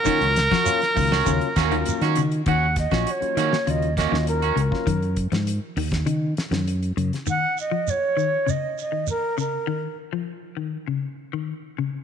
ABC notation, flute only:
X:1
M:4/4
L:1/8
Q:1/4=100
K:Ebm
V:1 name="Flute"
z8 | g e d2 e e B B- | B z6 z | g e d2 e e B B- |
B z6 z |]